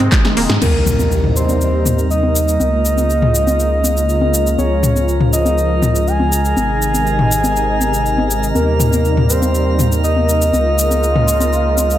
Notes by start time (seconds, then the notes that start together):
Already playing: C3 D#3 G#3 D#4
0.00 C4
0.12 G#3, kick, snare, clap, closed hi-hat
0.25 G#3, snare, closed hi-hat, high conga
0.37 D#1 A#3, open hi-hat
0.49 G#2 G#3, snare, closed hi-hat
0.62 D#2 C3 G3 A#3 D#4 A#4 A#5, crash, impact, high conga, shaker
0.87 mid tom, shaker
0.99 high conga, shaker
1.12 shaker
1.24 mid tom
1.36 C5, shaker
1.49 high conga, shaker
1.61 shaker
1.86 mid tom, high conga, shaker
1.99 shaker
2.10 D#5, shaker
2.23 high conga
2.36 shaker
2.48 shaker
2.60 C#2 C#3 G#3 F4, high conga, shaker
2.85 shaker
2.98 high conga, shaker
3.10 shaker
3.22 mid tom
3.35 shaker
3.47 high conga, shaker
3.60 shaker
3.84 high conga, shaker
3.97 shaker
4.09 shaker
4.21 high conga
4.34 shaker
4.47 shaker
4.58 C#2 F3 C#5, high conga, shaker
4.83 mid tom, shaker
4.96 high conga, shaker
5.09 shaker
5.21 mid tom
5.33 D#5, shaker
5.45 high conga, shaker
5.58 shaker
5.82 mid tom, high conga, shaker
5.96 shaker
6.07 G#5, shaker
6.20 high conga
6.32 shaker
6.45 shaker
6.57 G#1 C3 D#3 D#4, high conga, shaker
6.82 shaker
6.94 high conga, shaker
7.07 shaker
7.19 mid tom
7.32 shaker
7.44 high conga, shaker
7.56 shaker
7.81 high conga, shaker
7.94 shaker
8.06 shaker
8.18 high conga
8.31 shaker
8.43 shaker
8.55 D#2 G3 A#3 A#4, high conga, shaker
8.80 mid tom, shaker
8.93 high conga, shaker
9.05 shaker
9.17 mid tom
9.29 C5, shaker
9.42 high conga, shaker
9.55 shaker
9.79 mid tom, high conga, shaker
9.92 shaker
10.04 D#5, shaker
10.16 high conga
10.29 shaker
10.42 shaker
10.53 C#2 C#3 G#3 F4, high conga, shaker
10.79 shaker
10.91 high conga, shaker
11.03 shaker
11.16 mid tom
11.28 shaker
11.40 high conga, shaker
11.53 shaker
11.77 high conga, shaker
11.90 shaker